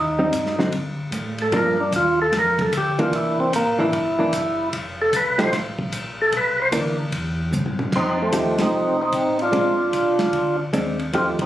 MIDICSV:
0, 0, Header, 1, 5, 480
1, 0, Start_track
1, 0, Tempo, 400000
1, 1832, Time_signature, 4, 2, 24, 8
1, 13751, End_track
2, 0, Start_track
2, 0, Title_t, "Tonewheel organ"
2, 0, Program_c, 0, 16
2, 0, Note_on_c, 0, 63, 67
2, 672, Note_off_c, 0, 63, 0
2, 1702, Note_on_c, 0, 69, 93
2, 1847, Note_off_c, 0, 69, 0
2, 1873, Note_on_c, 0, 70, 87
2, 2155, Note_off_c, 0, 70, 0
2, 2164, Note_on_c, 0, 62, 57
2, 2318, Note_off_c, 0, 62, 0
2, 2352, Note_on_c, 0, 65, 79
2, 2635, Note_off_c, 0, 65, 0
2, 2661, Note_on_c, 0, 69, 86
2, 2807, Note_off_c, 0, 69, 0
2, 2862, Note_on_c, 0, 70, 96
2, 3131, Note_off_c, 0, 70, 0
2, 3135, Note_on_c, 0, 69, 88
2, 3284, Note_off_c, 0, 69, 0
2, 3327, Note_on_c, 0, 67, 73
2, 3603, Note_off_c, 0, 67, 0
2, 3604, Note_on_c, 0, 65, 83
2, 3758, Note_off_c, 0, 65, 0
2, 3785, Note_on_c, 0, 64, 76
2, 4071, Note_off_c, 0, 64, 0
2, 4081, Note_on_c, 0, 60, 85
2, 4237, Note_off_c, 0, 60, 0
2, 4269, Note_on_c, 0, 58, 75
2, 4554, Note_off_c, 0, 58, 0
2, 4565, Note_on_c, 0, 64, 79
2, 5635, Note_off_c, 0, 64, 0
2, 6018, Note_on_c, 0, 69, 85
2, 6165, Note_off_c, 0, 69, 0
2, 6197, Note_on_c, 0, 71, 84
2, 6477, Note_off_c, 0, 71, 0
2, 6505, Note_on_c, 0, 72, 104
2, 6648, Note_off_c, 0, 72, 0
2, 7459, Note_on_c, 0, 69, 85
2, 7605, Note_off_c, 0, 69, 0
2, 7643, Note_on_c, 0, 71, 80
2, 7920, Note_off_c, 0, 71, 0
2, 7942, Note_on_c, 0, 72, 104
2, 8031, Note_off_c, 0, 72, 0
2, 9549, Note_on_c, 0, 60, 64
2, 9561, Note_on_c, 0, 63, 83
2, 9821, Note_off_c, 0, 60, 0
2, 9828, Note_off_c, 0, 63, 0
2, 9867, Note_on_c, 0, 57, 54
2, 9871, Note_on_c, 0, 60, 77
2, 10293, Note_off_c, 0, 57, 0
2, 10295, Note_off_c, 0, 60, 0
2, 10332, Note_on_c, 0, 60, 72
2, 10338, Note_on_c, 0, 63, 90
2, 10765, Note_off_c, 0, 60, 0
2, 10805, Note_off_c, 0, 63, 0
2, 10819, Note_on_c, 0, 63, 97
2, 10830, Note_on_c, 0, 60, 65
2, 11255, Note_off_c, 0, 60, 0
2, 11295, Note_off_c, 0, 63, 0
2, 11302, Note_on_c, 0, 65, 96
2, 11316, Note_on_c, 0, 62, 71
2, 12677, Note_off_c, 0, 65, 0
2, 12684, Note_off_c, 0, 62, 0
2, 13372, Note_on_c, 0, 65, 84
2, 13379, Note_on_c, 0, 60, 64
2, 13509, Note_off_c, 0, 65, 0
2, 13514, Note_off_c, 0, 60, 0
2, 13697, Note_on_c, 0, 63, 76
2, 13701, Note_on_c, 0, 60, 61
2, 13751, Note_off_c, 0, 60, 0
2, 13751, Note_off_c, 0, 63, 0
2, 13751, End_track
3, 0, Start_track
3, 0, Title_t, "Hollow-body jazz guitar"
3, 0, Program_c, 1, 26
3, 225, Note_on_c, 1, 55, 58
3, 231, Note_on_c, 1, 60, 60
3, 240, Note_on_c, 1, 63, 66
3, 376, Note_off_c, 1, 55, 0
3, 379, Note_off_c, 1, 60, 0
3, 384, Note_off_c, 1, 63, 0
3, 703, Note_on_c, 1, 50, 59
3, 705, Note_on_c, 1, 54, 55
3, 716, Note_on_c, 1, 60, 61
3, 717, Note_on_c, 1, 63, 71
3, 855, Note_off_c, 1, 50, 0
3, 856, Note_off_c, 1, 54, 0
3, 861, Note_off_c, 1, 60, 0
3, 862, Note_off_c, 1, 63, 0
3, 1828, Note_on_c, 1, 53, 50
3, 1839, Note_on_c, 1, 58, 54
3, 1842, Note_on_c, 1, 62, 54
3, 2111, Note_off_c, 1, 53, 0
3, 2116, Note_off_c, 1, 58, 0
3, 2118, Note_off_c, 1, 62, 0
3, 3584, Note_on_c, 1, 52, 62
3, 3592, Note_on_c, 1, 58, 65
3, 3598, Note_on_c, 1, 62, 68
3, 4199, Note_off_c, 1, 52, 0
3, 4203, Note_off_c, 1, 58, 0
3, 4206, Note_off_c, 1, 62, 0
3, 4544, Note_on_c, 1, 52, 72
3, 4554, Note_on_c, 1, 58, 78
3, 4559, Note_on_c, 1, 62, 77
3, 4696, Note_off_c, 1, 52, 0
3, 4701, Note_off_c, 1, 58, 0
3, 4703, Note_off_c, 1, 62, 0
3, 5024, Note_on_c, 1, 52, 60
3, 5032, Note_on_c, 1, 58, 64
3, 5040, Note_on_c, 1, 62, 71
3, 5176, Note_off_c, 1, 52, 0
3, 5180, Note_off_c, 1, 58, 0
3, 5184, Note_off_c, 1, 62, 0
3, 6459, Note_on_c, 1, 53, 59
3, 6463, Note_on_c, 1, 57, 67
3, 6468, Note_on_c, 1, 63, 73
3, 6475, Note_on_c, 1, 67, 67
3, 6613, Note_off_c, 1, 53, 0
3, 6615, Note_off_c, 1, 57, 0
3, 6617, Note_off_c, 1, 63, 0
3, 6621, Note_off_c, 1, 67, 0
3, 8064, Note_on_c, 1, 52, 56
3, 8069, Note_on_c, 1, 58, 68
3, 8079, Note_on_c, 1, 62, 71
3, 8348, Note_off_c, 1, 52, 0
3, 8350, Note_off_c, 1, 58, 0
3, 8355, Note_off_c, 1, 62, 0
3, 9990, Note_on_c, 1, 53, 55
3, 9996, Note_on_c, 1, 57, 50
3, 10001, Note_on_c, 1, 63, 57
3, 10005, Note_on_c, 1, 67, 56
3, 10720, Note_off_c, 1, 53, 0
3, 10724, Note_off_c, 1, 57, 0
3, 10726, Note_off_c, 1, 63, 0
3, 10728, Note_off_c, 1, 67, 0
3, 11424, Note_on_c, 1, 56, 49
3, 11433, Note_on_c, 1, 60, 56
3, 11439, Note_on_c, 1, 62, 51
3, 11709, Note_off_c, 1, 56, 0
3, 11713, Note_off_c, 1, 60, 0
3, 11716, Note_off_c, 1, 62, 0
3, 12876, Note_on_c, 1, 56, 57
3, 12884, Note_on_c, 1, 60, 60
3, 12887, Note_on_c, 1, 62, 65
3, 13156, Note_off_c, 1, 56, 0
3, 13160, Note_off_c, 1, 60, 0
3, 13162, Note_off_c, 1, 62, 0
3, 13363, Note_on_c, 1, 53, 61
3, 13368, Note_on_c, 1, 57, 55
3, 13372, Note_on_c, 1, 63, 60
3, 13374, Note_on_c, 1, 67, 63
3, 13640, Note_off_c, 1, 53, 0
3, 13642, Note_off_c, 1, 57, 0
3, 13644, Note_off_c, 1, 63, 0
3, 13646, Note_off_c, 1, 67, 0
3, 13751, End_track
4, 0, Start_track
4, 0, Title_t, "Tonewheel organ"
4, 0, Program_c, 2, 16
4, 0, Note_on_c, 2, 39, 79
4, 376, Note_off_c, 2, 39, 0
4, 393, Note_on_c, 2, 43, 83
4, 858, Note_off_c, 2, 43, 0
4, 864, Note_on_c, 2, 38, 80
4, 1334, Note_off_c, 2, 38, 0
4, 1344, Note_on_c, 2, 45, 80
4, 1814, Note_off_c, 2, 45, 0
4, 1825, Note_on_c, 2, 43, 87
4, 2294, Note_off_c, 2, 43, 0
4, 2306, Note_on_c, 2, 39, 86
4, 2775, Note_off_c, 2, 39, 0
4, 2787, Note_on_c, 2, 41, 82
4, 3255, Note_off_c, 2, 41, 0
4, 3270, Note_on_c, 2, 38, 86
4, 3737, Note_off_c, 2, 38, 0
4, 3748, Note_on_c, 2, 36, 75
4, 4216, Note_off_c, 2, 36, 0
4, 4232, Note_on_c, 2, 33, 89
4, 4698, Note_off_c, 2, 33, 0
4, 4710, Note_on_c, 2, 31, 92
4, 5177, Note_off_c, 2, 31, 0
4, 5194, Note_on_c, 2, 30, 89
4, 5659, Note_off_c, 2, 30, 0
4, 5672, Note_on_c, 2, 29, 86
4, 6137, Note_off_c, 2, 29, 0
4, 6151, Note_on_c, 2, 36, 92
4, 6617, Note_off_c, 2, 36, 0
4, 6632, Note_on_c, 2, 33, 87
4, 7097, Note_off_c, 2, 33, 0
4, 7107, Note_on_c, 2, 34, 94
4, 7574, Note_off_c, 2, 34, 0
4, 7588, Note_on_c, 2, 36, 88
4, 8055, Note_off_c, 2, 36, 0
4, 8067, Note_on_c, 2, 38, 85
4, 8534, Note_off_c, 2, 38, 0
4, 8544, Note_on_c, 2, 40, 94
4, 9013, Note_off_c, 2, 40, 0
4, 9022, Note_on_c, 2, 43, 94
4, 9492, Note_off_c, 2, 43, 0
4, 9506, Note_on_c, 2, 41, 77
4, 9974, Note_off_c, 2, 41, 0
4, 9988, Note_on_c, 2, 39, 89
4, 10279, Note_off_c, 2, 39, 0
4, 10295, Note_on_c, 2, 39, 38
4, 10381, Note_off_c, 2, 39, 0
4, 10460, Note_on_c, 2, 36, 81
4, 10931, Note_off_c, 2, 36, 0
4, 10950, Note_on_c, 2, 33, 81
4, 11417, Note_off_c, 2, 33, 0
4, 11431, Note_on_c, 2, 34, 80
4, 11898, Note_off_c, 2, 34, 0
4, 11913, Note_on_c, 2, 36, 90
4, 12380, Note_off_c, 2, 36, 0
4, 12393, Note_on_c, 2, 38, 86
4, 12859, Note_off_c, 2, 38, 0
4, 12874, Note_on_c, 2, 39, 82
4, 13341, Note_off_c, 2, 39, 0
4, 13353, Note_on_c, 2, 41, 76
4, 13509, Note_off_c, 2, 41, 0
4, 13511, Note_on_c, 2, 39, 54
4, 13672, Note_on_c, 2, 36, 60
4, 13674, Note_off_c, 2, 39, 0
4, 13751, Note_off_c, 2, 36, 0
4, 13751, End_track
5, 0, Start_track
5, 0, Title_t, "Drums"
5, 392, Note_on_c, 9, 36, 21
5, 392, Note_on_c, 9, 44, 52
5, 392, Note_on_c, 9, 51, 61
5, 512, Note_off_c, 9, 36, 0
5, 512, Note_off_c, 9, 44, 0
5, 512, Note_off_c, 9, 51, 0
5, 551, Note_on_c, 9, 38, 27
5, 671, Note_off_c, 9, 38, 0
5, 714, Note_on_c, 9, 38, 41
5, 834, Note_off_c, 9, 38, 0
5, 869, Note_on_c, 9, 36, 21
5, 869, Note_on_c, 9, 51, 61
5, 989, Note_off_c, 9, 36, 0
5, 989, Note_off_c, 9, 51, 0
5, 1346, Note_on_c, 9, 44, 53
5, 1346, Note_on_c, 9, 51, 64
5, 1349, Note_on_c, 9, 36, 20
5, 1466, Note_off_c, 9, 44, 0
5, 1466, Note_off_c, 9, 51, 0
5, 1469, Note_off_c, 9, 36, 0
5, 1661, Note_on_c, 9, 51, 44
5, 1781, Note_off_c, 9, 51, 0
5, 1827, Note_on_c, 9, 51, 56
5, 1829, Note_on_c, 9, 36, 22
5, 1947, Note_off_c, 9, 51, 0
5, 1949, Note_off_c, 9, 36, 0
5, 2308, Note_on_c, 9, 44, 54
5, 2308, Note_on_c, 9, 51, 65
5, 2309, Note_on_c, 9, 36, 23
5, 2428, Note_off_c, 9, 44, 0
5, 2428, Note_off_c, 9, 51, 0
5, 2429, Note_off_c, 9, 36, 0
5, 2791, Note_on_c, 9, 36, 19
5, 2791, Note_on_c, 9, 38, 35
5, 2791, Note_on_c, 9, 51, 63
5, 2911, Note_off_c, 9, 36, 0
5, 2911, Note_off_c, 9, 38, 0
5, 2911, Note_off_c, 9, 51, 0
5, 3104, Note_on_c, 9, 36, 60
5, 3106, Note_on_c, 9, 51, 48
5, 3224, Note_off_c, 9, 36, 0
5, 3226, Note_off_c, 9, 51, 0
5, 3271, Note_on_c, 9, 44, 50
5, 3271, Note_on_c, 9, 51, 69
5, 3272, Note_on_c, 9, 36, 18
5, 3391, Note_off_c, 9, 44, 0
5, 3391, Note_off_c, 9, 51, 0
5, 3392, Note_off_c, 9, 36, 0
5, 3586, Note_on_c, 9, 51, 45
5, 3706, Note_off_c, 9, 51, 0
5, 3754, Note_on_c, 9, 36, 22
5, 3755, Note_on_c, 9, 51, 61
5, 3874, Note_off_c, 9, 36, 0
5, 3875, Note_off_c, 9, 51, 0
5, 4235, Note_on_c, 9, 36, 21
5, 4238, Note_on_c, 9, 44, 52
5, 4238, Note_on_c, 9, 51, 75
5, 4355, Note_off_c, 9, 36, 0
5, 4358, Note_off_c, 9, 44, 0
5, 4358, Note_off_c, 9, 51, 0
5, 4714, Note_on_c, 9, 36, 24
5, 4715, Note_on_c, 9, 51, 58
5, 4834, Note_off_c, 9, 36, 0
5, 4835, Note_off_c, 9, 51, 0
5, 5193, Note_on_c, 9, 44, 61
5, 5193, Note_on_c, 9, 51, 66
5, 5194, Note_on_c, 9, 36, 23
5, 5313, Note_off_c, 9, 44, 0
5, 5313, Note_off_c, 9, 51, 0
5, 5314, Note_off_c, 9, 36, 0
5, 5674, Note_on_c, 9, 36, 21
5, 5674, Note_on_c, 9, 51, 61
5, 5794, Note_off_c, 9, 36, 0
5, 5794, Note_off_c, 9, 51, 0
5, 6153, Note_on_c, 9, 36, 20
5, 6154, Note_on_c, 9, 44, 53
5, 6154, Note_on_c, 9, 51, 69
5, 6273, Note_off_c, 9, 36, 0
5, 6274, Note_off_c, 9, 44, 0
5, 6274, Note_off_c, 9, 51, 0
5, 6465, Note_on_c, 9, 38, 39
5, 6465, Note_on_c, 9, 51, 44
5, 6585, Note_off_c, 9, 38, 0
5, 6585, Note_off_c, 9, 51, 0
5, 6632, Note_on_c, 9, 36, 20
5, 6633, Note_on_c, 9, 38, 39
5, 6633, Note_on_c, 9, 51, 63
5, 6752, Note_off_c, 9, 36, 0
5, 6753, Note_off_c, 9, 38, 0
5, 6753, Note_off_c, 9, 51, 0
5, 6943, Note_on_c, 9, 36, 59
5, 7063, Note_off_c, 9, 36, 0
5, 7109, Note_on_c, 9, 36, 19
5, 7109, Note_on_c, 9, 44, 48
5, 7109, Note_on_c, 9, 51, 72
5, 7229, Note_off_c, 9, 36, 0
5, 7229, Note_off_c, 9, 44, 0
5, 7229, Note_off_c, 9, 51, 0
5, 7588, Note_on_c, 9, 36, 21
5, 7589, Note_on_c, 9, 51, 62
5, 7708, Note_off_c, 9, 36, 0
5, 7709, Note_off_c, 9, 51, 0
5, 8067, Note_on_c, 9, 44, 55
5, 8067, Note_on_c, 9, 51, 71
5, 8068, Note_on_c, 9, 36, 17
5, 8187, Note_off_c, 9, 44, 0
5, 8187, Note_off_c, 9, 51, 0
5, 8188, Note_off_c, 9, 36, 0
5, 8546, Note_on_c, 9, 36, 25
5, 8547, Note_on_c, 9, 51, 61
5, 8666, Note_off_c, 9, 36, 0
5, 8667, Note_off_c, 9, 51, 0
5, 9030, Note_on_c, 9, 44, 58
5, 9030, Note_on_c, 9, 48, 49
5, 9150, Note_off_c, 9, 44, 0
5, 9150, Note_off_c, 9, 48, 0
5, 9190, Note_on_c, 9, 47, 53
5, 9310, Note_off_c, 9, 47, 0
5, 9348, Note_on_c, 9, 47, 82
5, 9468, Note_off_c, 9, 47, 0
5, 9508, Note_on_c, 9, 36, 65
5, 9509, Note_on_c, 9, 49, 67
5, 9628, Note_off_c, 9, 36, 0
5, 9629, Note_off_c, 9, 49, 0
5, 9990, Note_on_c, 9, 36, 23
5, 9990, Note_on_c, 9, 44, 57
5, 9990, Note_on_c, 9, 51, 69
5, 10110, Note_off_c, 9, 36, 0
5, 10110, Note_off_c, 9, 44, 0
5, 10110, Note_off_c, 9, 51, 0
5, 10301, Note_on_c, 9, 38, 73
5, 10301, Note_on_c, 9, 51, 64
5, 10421, Note_off_c, 9, 38, 0
5, 10421, Note_off_c, 9, 51, 0
5, 10950, Note_on_c, 9, 44, 44
5, 10950, Note_on_c, 9, 51, 61
5, 10952, Note_on_c, 9, 36, 22
5, 11070, Note_off_c, 9, 44, 0
5, 11070, Note_off_c, 9, 51, 0
5, 11072, Note_off_c, 9, 36, 0
5, 11268, Note_on_c, 9, 51, 43
5, 11388, Note_off_c, 9, 51, 0
5, 11434, Note_on_c, 9, 36, 20
5, 11434, Note_on_c, 9, 51, 55
5, 11554, Note_off_c, 9, 36, 0
5, 11554, Note_off_c, 9, 51, 0
5, 11915, Note_on_c, 9, 36, 23
5, 11916, Note_on_c, 9, 44, 48
5, 11916, Note_on_c, 9, 51, 59
5, 12035, Note_off_c, 9, 36, 0
5, 12036, Note_off_c, 9, 44, 0
5, 12036, Note_off_c, 9, 51, 0
5, 12226, Note_on_c, 9, 38, 53
5, 12226, Note_on_c, 9, 51, 42
5, 12346, Note_off_c, 9, 38, 0
5, 12346, Note_off_c, 9, 51, 0
5, 12394, Note_on_c, 9, 36, 22
5, 12395, Note_on_c, 9, 51, 57
5, 12514, Note_off_c, 9, 36, 0
5, 12515, Note_off_c, 9, 51, 0
5, 12877, Note_on_c, 9, 36, 21
5, 12880, Note_on_c, 9, 44, 60
5, 12880, Note_on_c, 9, 51, 61
5, 12997, Note_off_c, 9, 36, 0
5, 13000, Note_off_c, 9, 44, 0
5, 13000, Note_off_c, 9, 51, 0
5, 13193, Note_on_c, 9, 51, 45
5, 13313, Note_off_c, 9, 51, 0
5, 13358, Note_on_c, 9, 36, 18
5, 13361, Note_on_c, 9, 51, 56
5, 13478, Note_off_c, 9, 36, 0
5, 13481, Note_off_c, 9, 51, 0
5, 13668, Note_on_c, 9, 36, 74
5, 13668, Note_on_c, 9, 51, 63
5, 13751, Note_off_c, 9, 36, 0
5, 13751, Note_off_c, 9, 51, 0
5, 13751, End_track
0, 0, End_of_file